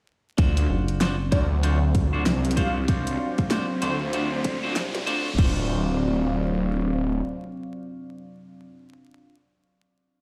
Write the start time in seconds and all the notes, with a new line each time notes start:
0.37 D2 F#3 C4 D4 F4 F#4 C5 D5 F5, kick, closed hi-hat, riser
0.57 closed hi-hat
0.70 F#1
0.88 closed hi-hat
1.00 D4 F4 F#4 C5, snare, closed hi-hat
1.32 D2 D4 F4 F#4 C5 D5, kick, closed hi-hat
1.63 D4 F4 F#4 C5, closed hi-hat
1.95 kick, closed hi-hat
2.13 D4 F4 F#4 C5
2.26 C2, snare, closed hi-hat
2.45 closed hi-hat
2.51 closed hi-hat
2.57 D4 F4 F#4 C5 F5, kick, closed hi-hat
2.88 D4 F4 F#4 C5, kick, closed hi-hat
3.07 closed hi-hat
3.38 kick, closed hi-hat
3.50 D4 F4 F#4 C5, snare, closed hi-hat
3.82 D2 D4 F4 F#4 C5, closed hi-hat
4.13 D4 F4 F#4 C5, closed hi-hat
4.44 kick, closed hi-hat
4.63 D4 F4 F#4 C5
4.76 C2, snare, closed hi-hat
4.95 snare, closed hi-hat
5.07 D2 D4 F4 F#4 C5, closed hi-hat
5.38 D1 F#3 C4 D4 F4 F#4 C5 D5 F5, kick, crash